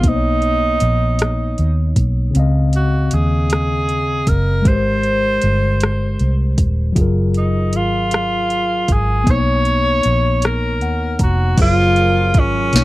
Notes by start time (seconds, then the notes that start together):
0.01 B1 A#3 B3, kick, closed hi-hat
0.06 D#4 C5
0.16 C#5
0.42 closed hi-hat
0.80 A#1, closed hi-hat
1.19 cross-stick, closed hi-hat
1.58 D#2, closed hi-hat
1.96 B1, kick, closed hi-hat
2.31 C#3 C4, closed hi-hat
2.36 C#2 D#5 F5
2.73 F#4, closed hi-hat
3.11 D#2 G#4, closed hi-hat
3.50 cross-stick, closed hi-hat
3.89 closed hi-hat
4.27 F#1 A#4, kick, closed hi-hat
4.62 G#3 G4, kick, closed hi-hat
4.66 G#1 A#4 C5
4.70 B4
4.76 C5
5.03 closed hi-hat
5.42 G1, closed hi-hat
5.80 cross-stick, closed hi-hat
6.19 C2, closed hi-hat
6.58 D#1, kick, closed hi-hat
6.93 F#3 F4, kick, closed hi-hat
6.97 F#1 G#4
7.01 A#4
7.34 D#4, closed hi-hat
7.73 G#1 F4, closed hi-hat
8.11 cross-stick, closed hi-hat
8.50 closed hi-hat
8.88 G#1 G#4, kick, closed hi-hat
9.24 B1 A#3 B3, kick, closed hi-hat
9.30 D#4 C5 C#5
9.39 C#5
9.65 closed hi-hat
10.03 A#1, closed hi-hat
10.42 cross-stick, closed hi-hat
10.46 A#4
10.81 D#2 F#5, closed hi-hat
11.19 F1 A#5, kick, closed hi-hat
11.23 F#4
11.57 F#1 C#3 F3 F#3 A#3 F4 G#4 A#4, kick, closed hi-hat, crash
11.61 F4 A#4
11.96 closed hi-hat
12.34 G#1, kick, closed hi-hat
12.39 C#4
12.72 B1 B2 D#3 F#3 A#3 C#4 D#4 F#4, snare, closed hi-hat
12.77 C#5